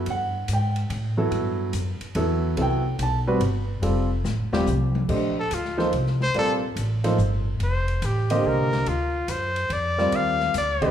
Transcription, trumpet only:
5.40 A4
5.54 F4
6.22 C5
6.39 A4
7.64 C5
8.06 G4
8.48 A#4
8.89 F4
9.31 C5
9.73 D5
10.16 F5
10.58 D5

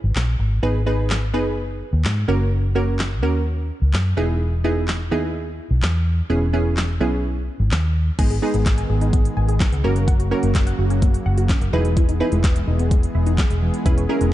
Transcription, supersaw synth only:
8.19 D#3 G#3 B3 G#4
9.84 C#3 F#3 A#3 F#4
11.73 E3 G#3 B3 G#4
13.86 C#3

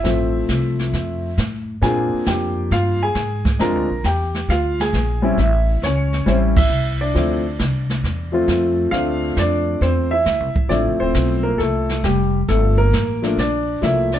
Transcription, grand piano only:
Already playing: E5
0.03 F3 A3 C4 E4
1.82 A#3 C4 D4 F4 G#4 G#5
2.27 G4 G5
2.72 F4 F5
3.03 G#4 G#5
3.59 G#3 C4 D4 F4 A#4 A#5
4.06 G4 G5
4.50 F4 F5
4.81 G#4 G#5
5.22 G3 C4 C#4 E4
5.39 E4 E5
5.84 C#4 C#5
6.26 G3 C4 C#4 E4 C5
6.57 E4 E5
7.01 D4 D5
7.14 F3 A3 C4 E4
8.32 F3 A3 C4 F4
8.91 A3 C4 D4 F4 F5
9.39 D4 D5
9.82 C4 C5
10.11 E4 E5
10.69 F3 A3 C4 D4 E4 D5
11.00 C4 C5
11.43 A#3 A#4
11.58 A3 A4
12.04 G3 G4
12.49 A3 A4
12.78 A#3 A#4
13.22 F3 A3 A#3 D4
13.39 D4 D5
13.81 F3 A3 A#3 E4 E5
14.14 D4 D5

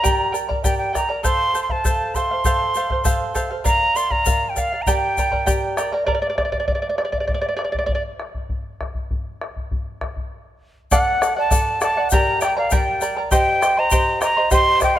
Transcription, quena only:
Already playing: A#5
0.64 G5
0.78 G5
0.95 A#5
1.25 C6
1.63 C6
1.71 A5
2.15 C6
3.67 A#5
3.96 C6
4.11 A#5
4.49 G5
4.60 F5
4.82 A#5
4.90 G5
10.92 F#5
11.39 A5
11.83 A5
12.12 A#5
12.43 G5
12.58 F5
12.74 G5
13.34 G5
13.79 A#5
14.23 A#5
14.53 C6
14.83 G5

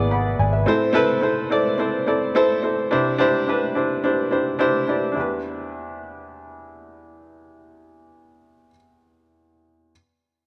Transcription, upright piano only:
Already playing: G#2 B3 E4 G#4 B4 D5
0.11 F#5 B5
0.39 D5 G#5
0.53 B4 E5
0.66 A2 C4 E4 A4 C5
0.93 C4 E4 A4 B4
1.21 C4 E4 A4 C5
1.50 C4 E4 A4 D5
1.78 C4 E4 A4 C5
2.06 C4 E4 A4 D5
2.35 C4 E4 A4 C5
2.63 C4 E4 A4 C5
2.91 C3 D4 E4 G4 C5
3.18 D4 E4 G4 C5
3.47 D4 E4 G4 B4
3.75 D4 E4 G4 C5
4.04 D4 E4 G4 C5
4.31 D4 E4 G4 C5
4.59 D4 E4 G4 C5
4.87 D4 E4 G4 D5
5.12 D4 E4
5.16 E2 G4 B4

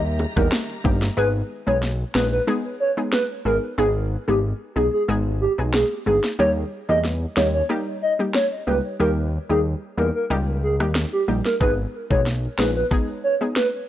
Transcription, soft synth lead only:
0.36 A#4
1.17 B4
1.67 C#5
2.15 B4
2.32 B4
2.80 C#5
3.13 B4
3.46 A#4
3.78 G#4
4.28 G4
4.76 G#4
4.93 G#4
5.41 G4
5.74 G#4
6.06 G#4
6.39 C#5
6.89 D#5
7.37 C#5
7.54 C#5
8.02 D#5
8.35 C#5
8.67 B4
9.00 A#4
9.50 G#4
9.98 A#4
10.15 A#4
10.63 G#4
11.13 G4
11.45 A#4
11.61 B4
12.11 C#5
12.59 B4
12.76 B4
13.24 C#5
13.56 B4

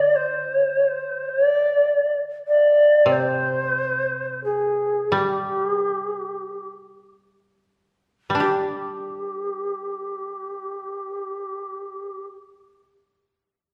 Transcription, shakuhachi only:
Already playing: D5
0.15 C5
1.28 D5
2.47 D5
3.11 C5
4.44 G#4
5.14 G4
5.72 G#4
5.83 G4
6.03 G#4
6.15 G4
8.41 G4

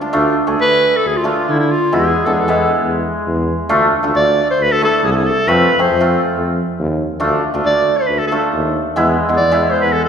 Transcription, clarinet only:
0.61 B4
0.97 A4
1.07 G#4
1.17 F4
1.26 F4
1.48 E4
1.60 E4
1.71 F4
1.95 G#4
2.26 A4
2.33 G#4
2.40 A4
4.16 D5
4.51 C5
4.62 B4
4.72 A4
4.84 A4
5.05 G#4
5.12 A4
5.16 G#4
5.26 A4
5.48 B4
5.82 C5
7.66 D5
7.97 C5
8.07 B4
8.19 A4
8.27 A4
9.37 D5
9.71 C5
9.79 B4 C5
9.93 A4
10.05 A4

